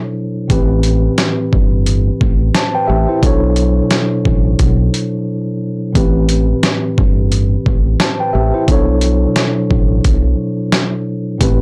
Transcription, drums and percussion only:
0.50 kick, closed hi-hat
0.83 closed hi-hat
1.18 snare, closed hi-hat
1.53 kick
1.86 closed hi-hat
2.21 kick
2.55 snare, closed hi-hat
3.23 kick, closed hi-hat
3.56 closed hi-hat
3.91 snare, closed hi-hat
4.25 kick
4.59 kick, closed hi-hat
4.94 closed hi-hat
5.95 kick, closed hi-hat
6.29 closed hi-hat
6.63 snare, closed hi-hat
6.98 kick
7.32 closed hi-hat
7.66 kick
8.00 snare, closed hi-hat
8.68 kick, closed hi-hat
9.01 closed hi-hat
9.36 snare, closed hi-hat
9.71 kick
10.04 kick, closed hi-hat
10.72 snare, closed hi-hat
11.41 kick, closed hi-hat

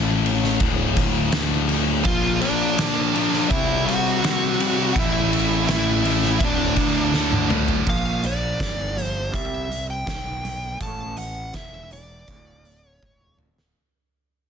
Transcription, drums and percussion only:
0.26 ride
0.44 snare
0.60 kick, ride
0.97 kick, ride
1.32 snare, ride
1.69 ride
2.05 kick, ride
2.41 ride
2.78 snare, ride
3.16 ride
3.34 snare
3.51 kick, ride
3.88 ride
4.24 snare, ride
4.60 ride
4.96 kick, ride
5.33 ride
5.68 snare, ride
6.05 ride
6.24 snare
6.41 kick, ride
6.76 kick, ride
7.14 snare
7.32 high tom
7.50 mid tom
7.68 floor tom
7.87 kick, crash
8.23 closed hi-hat
8.60 kick, snare, closed hi-hat
8.98 closed hi-hat
9.34 kick, closed hi-hat
9.72 closed hi-hat
10.07 kick, snare, closed hi-hat
10.45 closed hi-hat
10.81 kick, closed hi-hat
11.17 closed hi-hat
11.54 kick, snare, closed hi-hat
11.91 closed hi-hat
12.28 kick, closed hi-hat
12.65 closed hi-hat
13.02 kick, high tom
13.21 mid tom
13.39 mid tom
13.58 snare

